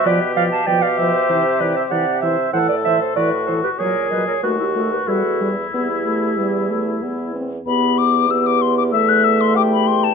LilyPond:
<<
  \new Staff \with { instrumentName = "Clarinet" } { \time 4/4 \key e \minor \tempo 4 = 95 d''8 f''16 a''16 g''16 f''16 e''4 d''16 e''16 fis''8 e''8 | fis''16 d''16 e''16 c''16 d''8 c''16 b'16 cis''8 dis''16 cis''16 b'16 g'16 a'16 b'16 | a'8. r16 g'2~ g'8 r8 | g'4 g'4 a'4 g'4 | }
  \new Staff \with { instrumentName = "Flute" } { \time 4/4 \key e \minor b'8 d''16 f''16 d''16 d''16 c''4 b'16 c''16 d''8 c''8 | c''16 b'16 c''16 a'16 b'8 a'16 g'16 ais'8 b'16 ais'16 fis'16 e'16 fis'16 g'16 | fis'8. r16 e'2~ e'8 r8 | b''8 d'''8 e'''16 d'''16 c'''16 d'''16 e'''16 fis'''16 e'''16 c'''16 d'''16 b''16 c'''16 a''16 | }
  \new Staff \with { instrumentName = "Oboe" } { \time 4/4 \key e \minor g'4 g'2~ g'8 r8 | a'4 fis'4 gis'4 fis'4 | e'2.~ e'8 r8 | r2 e''4 g''4 | }
  \new Staff \with { instrumentName = "French horn" } { \clef bass \time 4/4 \key e \minor f8 f8 f8 f8 e8 e8 e8 e8 | e8 e8 e8 e8 fis8 fis8 a8 a8 | g8 g8 b8 a8 g8 a8 b8 c'8 | b4 b4 a2 | }
  \new Staff \with { instrumentName = "Bassoon" } { \clef bass \time 4/4 \key e \minor b,4 b,4 c4 c4 | a,4 a,4 ais,4 dis,4 | e,4 e,4 e,4 e,4 | e,1 | }
>>